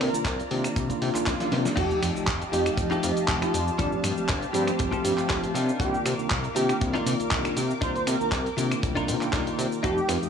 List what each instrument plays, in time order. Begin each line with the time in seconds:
Already playing: tine electric piano D#3 A#3 D4 F4, analog synth pad F4 D5 A#5
0.01 analog synth bass C3, analog synth lead A#4, finger snap, open hi-hat, cowbell
0.13 analog synth bass C2, tine electric piano D#3 A#3 D4 F4, closed hi-hat, shaker
0.25 analog synth bass C2, kick, clap, closed hi-hat, shaker
0.40 closed hi-hat, shaker
0.50 analog synth bass C3, tine electric piano D#3 A#3 D4 F4, open hi-hat
0.64 finger snap, closed hi-hat, shaker
0.76 analog synth bass C2, kick, closed hi-hat, swell, shaker
0.89 tine electric piano D#3 A#3 D4 F4, kick, closed hi-hat, shaker
1.02 analog synth bass C3, open hi-hat
1.14 analog synth bass C2, tine electric piano D#3 A#3 D4 F4, clap, closed hi-hat, shaker
1.26 analog synth bass C2, kick, snare, clap, closed hi-hat, shaker
1.39 tine electric piano D#3 A#3 D4 F4, snare, closed hi-hat, shaker
1.52 analog synth bass C3, snare, open hi-hat, cowbell
1.65 snare, shaker
1.76 analog synth bass F1, tine electric piano F3 A3 G4, clean electric guitar D#4 F4 G4 A4, analog synth lead G4, analog synth pad G4 D#5 F5 A5, kick, closed hi-hat, crash, sub drop, shaker
1.91 shaker
2.02 analog synth bass F2, finger snap, muted clean electric guitar stroke, open hi-hat, shaker
2.15 analog synth bass F1, tine electric piano F3 A3 D#4 G4, shaker
2.27 analog synth bass F1, kick, clap, closed hi-hat, shaker
2.41 muted clean electric guitar stroke, closed hi-hat, shaker
2.52 analog synth bass F2, tine electric piano F3 A3 D#4 G4, analog synth lead G4, muted clean electric guitar stroke, open hi-hat, shaker
2.66 analog synth lead G4, finger snap, muted clean electric guitar stroke, closed hi-hat, shaker
2.77 analog synth bass F1, muted clean electric guitar stroke, kick, closed hi-hat, shaker
2.91 tine electric piano F3 A3 D#4 G4, clean electric guitar D#4 F4 G4 A4, clap, shaker
3.03 analog synth bass F2, open hi-hat, shaker
3.17 analog synth bass F1, closed hi-hat, shaker
3.27 analog synth bass F1, clean electric guitar D#4 F4 G4 A4, kick, clap, closed hi-hat, shaker
3.41 tine electric piano F3 A3 D#4 G4, analog synth lead F4, finger snap, closed hi-hat, shaker
3.54 analog synth bass F2, open hi-hat, shaker
3.68 shaker
3.78 analog synth bass G1, tine electric piano F3 A3 C4 G4, clean electric guitar C4 F4 G4 A4, analog synth lead D4, analog synth pad G4 C5, kick, closed hi-hat, shaker
3.92 shaker
4.04 analog synth bass G2, finger snap, muted clean electric guitar stroke, open hi-hat, shaker
4.17 analog synth bass G1, tine electric piano F3 A3 C4 G4, shaker
4.29 analog synth bass G1, kick, clap, closed hi-hat, shaker
4.42 muted clean electric guitar stroke, closed hi-hat, shaker
4.53 analog synth bass G2, tine electric piano F3 A3 C4 G4, analog synth lead C4, muted clean electric guitar stroke, open hi-hat, shaker
4.66 analog synth lead C4, finger snap, muted clean electric guitar stroke, closed hi-hat, shaker
4.79 analog synth bass G1, muted clean electric guitar stroke, kick, closed hi-hat, shaker
4.91 tine electric piano F3 A3 C4 G4, clean electric guitar C4 F4 G4 A4, kick, shaker
5.04 analog synth bass G2, open hi-hat, shaker
5.18 analog synth bass G1, clap, closed hi-hat, shaker
5.28 analog synth bass G1, clean electric guitar C4 F4 G4 A4, kick, clap, closed hi-hat, shaker
5.42 tine electric piano F3 A3 C4 G4, closed hi-hat, shaker
5.54 analog synth bass C3, clean electric guitar D4 D#4 F4 A#4, analog synth pad A#4 D6, open hi-hat, shaker
5.69 shaker
5.79 analog synth bass C2, tine electric piano D#3 A#3 F4 D5, analog synth lead G4, kick, closed hi-hat, shaker
5.94 shaker
6.04 analog synth bass C3, finger snap, muted clean electric guitar stroke, open hi-hat, shaker
6.18 analog synth bass C2, tine electric piano D#3 A#3 D4 F4, shaker
6.30 analog synth bass C2, kick, clap, closed hi-hat, shaker
6.43 muted clean electric guitar stroke, closed hi-hat, shaker
6.55 analog synth bass C3, tine electric piano D#3 A#3 D4 F4, analog synth lead G4, muted clean electric guitar stroke, open hi-hat, shaker
6.68 analog synth lead G4, finger snap, muted clean electric guitar stroke, closed hi-hat, shaker
6.80 analog synth bass C2, muted clean electric guitar stroke, kick, closed hi-hat, shaker
6.94 tine electric piano D#3 A#3 F4 D5, clean electric guitar D4 D#4 F4 A#4, clap, shaker
7.06 analog synth bass C3, open hi-hat, shaker
7.20 analog synth bass C2, closed hi-hat, shaker
7.30 analog synth bass C2, clean electric guitar D4 D#4 F4 A#4, kick, clap, closed hi-hat, shaker
7.44 tine electric piano D#3 A#3 D4 F4, finger snap, closed hi-hat, shaker
7.56 analog synth bass C3, analog synth pad G5, open hi-hat, shaker
7.71 shaker
7.81 analog synth bass C2, tine electric piano D#3 A#3 F4 D5, clean electric guitar D4 D#4 F4 A#4, analog synth lead C5, kick, closed hi-hat, shaker
7.95 analog synth lead C5, closed hi-hat, shaker
8.07 analog synth bass C3, analog synth lead A#4, finger snap, open hi-hat, shaker
8.20 analog synth bass C2, tine electric piano D#3 A#3 D4 F4, shaker
8.32 analog synth bass C2, kick, clap, closed hi-hat, shaker
8.45 muted clean electric guitar stroke, closed hi-hat, shaker
8.57 analog synth bass C3, tine electric piano D#3 A#3 D4 F4, muted clean electric guitar stroke, open hi-hat, shaker
8.70 finger snap, muted clean electric guitar stroke, closed hi-hat, shaker
8.82 analog synth bass C2, muted clean electric guitar stroke, kick, closed hi-hat, shaker
8.95 tine electric piano D#3 A#3 D4 F4, clean electric guitar D4 D#4 F4 A#4, kick, closed hi-hat, shaker
9.08 analog synth bass C3, open hi-hat, shaker
9.21 analog synth bass C2, tine electric piano D#3 A#3 D4 F4, clap, closed hi-hat, shaker
9.33 analog synth bass C2, clean electric guitar D4 D#4 F4 A#4, kick, clap, closed hi-hat, shaker
9.46 tine electric piano D#3 A#3 F4 D5, closed hi-hat, shaker
9.58 analog synth bass C3, open hi-hat, shaker
9.72 shaker
9.83 analog synth bass F1, tine electric piano A3 D#4 G4, clean electric guitar D#4 F4 G4 A4, analog synth lead G4, analog synth pad A4 F5 D#6, kick, closed hi-hat, shaker
9.98 shaker
10.09 analog synth bass F2, finger snap, open hi-hat, cowbell, shaker
10.21 analog synth bass F1, tine electric piano F3 A3 D#4 G4, shaker